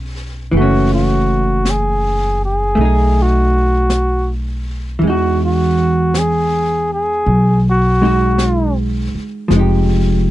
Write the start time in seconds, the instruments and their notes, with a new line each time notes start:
Already playing: upright bass B1, hollow-body jazz guitar F#3 B3 C#4
0.52 upright bass F#1, hollow-body jazz guitar E3, brush sweep
0.57 hollow-body jazz guitar A3, flugelhorn F#4
0.62 hollow-body jazz guitar C#4
0.94 flugelhorn F#4
1.65 brush sweep, snare, hi-hat pedal
1.70 flugelhorn G#4
2.45 flugelhorn G#4
2.75 upright bass B1, hollow-body jazz guitar A3, brush sweep
2.81 hollow-body jazz guitar D#4
2.85 hollow-body jazz guitar G#4
3.22 flugelhorn F#4
3.90 brush sweep, snare, hi-hat pedal
4.99 upright bass E2, hollow-body jazz guitar E3, brush sweep
5.03 hollow-body jazz guitar G#3 D#4
5.09 flugelhorn F#4, hollow-body jazz guitar F#4
5.46 flugelhorn F#4
6.14 brush sweep, snare, hi-hat pedal
6.18 flugelhorn G#4
6.93 flugelhorn G#4
7.26 upright bass B1, brush sweep
7.70 flugelhorn F#4
8.02 hollow-body jazz guitar G#3 D#4 F#4
8.38 brush sweep, snare, hi-hat pedal
9.15 muted upright bass stroke
9.48 upright bass F1, hollow-body jazz guitar F3, brush sweep, snare
9.52 hollow-body jazz guitar G#3 D#4
9.59 hollow-body jazz guitar G4